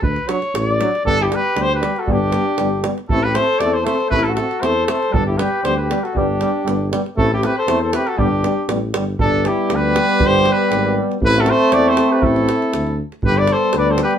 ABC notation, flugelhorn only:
X:1
M:2/4
L:1/16
Q:"Swing 16ths" 1/4=118
K:D
V:1 name="Flugelhorn"
z8 | [K:G] D E G2 G G2 F | D6 z2 | E G A2 A A A2 |
E F F2 A2 A2 | D E G2 G G2 F | D6 z2 | E E G A2 A G F |
D4 z4 | D2 E2 G4 | G2 G4 z2 | E F A2 A A2 G |
E6 z2 | G B A2 B A G2 |]